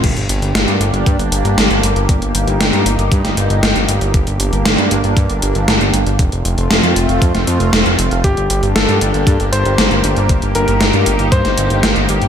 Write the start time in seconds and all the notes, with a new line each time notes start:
0.04 G1 A#3 D4 G4, kick, closed hi-hat, crash
0.16 G1, closed hi-hat
0.29 G1, closed hi-hat
0.42 G1, closed hi-hat
0.55 G1, snare, closed hi-hat
0.67 G2, closed hi-hat
0.80 G1, closed hi-hat
0.93 G1, closed hi-hat
1.06 G2, kick, closed hi-hat
1.19 G1, closed hi-hat
1.32 G1, closed hi-hat
1.45 G1, closed hi-hat
1.58 G1, snare, closed hi-hat
1.71 G1, closed hi-hat
1.83 G1, closed hi-hat
1.96 G1, closed hi-hat
2.09 G1 D#4, kick, closed hi-hat
2.22 G1, closed hi-hat
2.35 G1, closed hi-hat
2.47 G1, closed hi-hat
2.60 G1, snare, closed hi-hat
2.73 G2, closed hi-hat
2.86 G1, closed hi-hat
2.98 G1, closed hi-hat
3.12 G2, kick, closed hi-hat
3.24 G1, snare, closed hi-hat
3.37 G1, closed hi-hat
3.50 G1, closed hi-hat
3.63 G1, snare, closed hi-hat
3.76 G1, closed hi-hat
3.88 G1, closed hi-hat
4.01 G1, closed hi-hat
4.14 G1 A#3 D4, kick, closed hi-hat
4.27 G1, closed hi-hat
4.40 G1, closed hi-hat
4.53 G1, closed hi-hat
4.65 G1, snare, closed hi-hat
4.78 G2, closed hi-hat
4.91 G1, closed hi-hat
5.04 G1, closed hi-hat
5.17 G2, kick, closed hi-hat
5.30 G1, closed hi-hat
5.42 G1, closed hi-hat
5.55 G1, closed hi-hat
5.68 G1, snare, closed hi-hat
5.81 G1, closed hi-hat
5.94 G1, closed hi-hat
6.06 G1, closed hi-hat
6.19 F1 A3 C4 F4, kick, closed hi-hat
6.32 F1, closed hi-hat
6.45 F1, closed hi-hat
6.58 F1, closed hi-hat
6.70 F1, snare, closed hi-hat
6.83 F2, closed hi-hat
6.96 F1, closed hi-hat
7.09 F1, closed hi-hat
7.22 F2, kick, closed hi-hat
7.34 F1, snare, closed hi-hat
7.47 F2, closed hi-hat
7.60 F1, closed hi-hat
7.73 F1, snare, closed hi-hat
7.86 F1, closed hi-hat
7.99 F1, closed hi-hat
8.11 F1, closed hi-hat
8.24 G1 A#3 D4 G4, kick, closed hi-hat
8.37 G1, closed hi-hat
8.50 G1, closed hi-hat
8.63 G1, closed hi-hat
8.76 G1 A4, snare, closed hi-hat
8.89 G2, closed hi-hat
9.01 G1, closed hi-hat
9.14 G1, closed hi-hat
9.27 G2, kick, closed hi-hat
9.40 G1, closed hi-hat
9.53 G1 C5, closed hi-hat
9.65 G1, closed hi-hat
9.78 G1, snare, closed hi-hat
9.91 G1, closed hi-hat
10.04 G1, closed hi-hat
10.16 G1, closed hi-hat
10.29 G1 D#4, kick, closed hi-hat
10.42 G1, closed hi-hat
10.55 G1 A#4, closed hi-hat
10.68 G1, closed hi-hat
10.81 G1, snare, closed hi-hat
10.93 G2, closed hi-hat
11.06 G1, closed hi-hat
11.19 G1, closed hi-hat
11.32 G2 C5, kick, closed hi-hat
11.45 G1, snare, closed hi-hat
11.58 G1, closed hi-hat
11.70 G1, closed hi-hat
11.83 G1, snare, closed hi-hat
11.96 G1, closed hi-hat
12.09 G1, closed hi-hat
12.22 G1, closed hi-hat